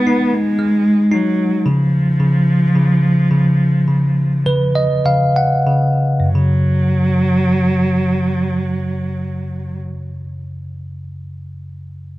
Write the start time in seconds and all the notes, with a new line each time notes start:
Already playing: G#3 B3 D#4
0.07 D#4
0.34 G#3
0.59 G#3
1.12 F#3 D#4
1.66 C#3 F3
2.20 C#3
2.75 C#3
3.31 C#3
3.88 C#3
4.46 C#3 B4
4.75 D#5
5.06 C#3 F5
5.36 F#5
5.67 C#3
6.20 F#2
6.28 F#3
6.35 C#3